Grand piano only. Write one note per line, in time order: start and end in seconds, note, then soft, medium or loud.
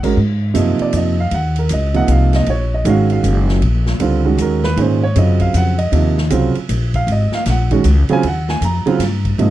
0.03 0.16 G#3 medium
0.03 0.16 C#4 medium
0.03 0.16 F#4 medium
0.03 0.16 A#4 medium
0.54 1.13 C3 medium
0.54 1.13 F3 medium
0.54 1.13 A#3 medium
0.54 1.14 D#4 medium
0.82 0.94 D5 medium
0.97 1.19 D#5 medium
1.20 1.33 F5 medium
1.34 1.57 F#5 medium
1.59 1.71 A#4 soft
1.73 1.96 D#5 medium
1.94 2.44 C3 medium
1.94 2.44 F3 soft
1.94 2.45 A#3 medium
1.94 2.45 D#4 medium
1.94 2.09 F#5 medium
2.12 2.34 F5 medium
2.36 2.48 D#5 medium
2.50 2.72 C#5 medium
2.74 2.87 D#5 medium
2.85 3.44 D#3 medium
2.85 3.44 G#3 medium
2.85 3.44 C#4 medium
2.85 3.44 F#4 medium
2.85 3.11 F5 medium
3.12 3.47 F5 medium
4.00 4.22 D3 medium
4.00 4.23 G3 medium
4.00 4.23 C4 medium
4.00 4.23 F4 medium
4.24 4.58 D#3 medium
4.24 4.59 G#3 medium
4.24 4.59 C#4 soft
4.24 4.59 F#4 medium
4.42 4.64 A#4 medium
4.64 4.78 B4 medium
4.77 4.99 A#2 medium
4.77 5.00 D#3 medium
4.77 5.00 G#3 soft
4.77 5.00 C#4 medium
4.77 5.03 C5 medium
5.03 5.16 C#5 medium
5.15 5.74 C#3 soft
5.15 5.74 F#3 soft
5.15 5.74 C4 soft
5.15 5.74 F4 soft
5.15 5.41 D#5 medium
5.41 5.54 F5 medium
5.57 5.79 F#5 medium
5.78 6.27 D#5 medium
5.92 6.14 C3 medium
5.92 6.15 F3 soft
5.92 6.15 A#3 soft
5.92 6.15 D#4 medium
6.30 6.53 C#3 medium
6.30 6.53 F#3 medium
6.30 6.53 C4 medium
6.30 6.53 F4 medium
6.96 7.08 F5 medium
7.12 7.34 D#5 medium
7.35 7.44 F5 medium
7.45 7.48 F5 soft
7.50 8.07 F#5 medium
7.71 7.84 D#3 medium
7.71 7.84 G#3 medium
7.71 7.84 C#4 medium
7.71 7.84 F#4 medium
8.09 8.22 C#3 medium
8.09 8.22 F#3 medium
8.09 8.22 C4 medium
8.09 8.23 F4 medium
8.09 8.25 G#5 loud
8.27 8.49 F#5 medium
8.50 8.62 G#5 medium
8.64 9.22 A#5 medium
8.86 8.99 C#3 medium
8.86 8.99 F#3 medium
8.86 8.99 C4 medium
8.86 8.99 F4 medium
9.39 9.50 C3 medium
9.39 9.50 F3 medium
9.39 9.50 A#3 medium
9.39 9.50 D#4 medium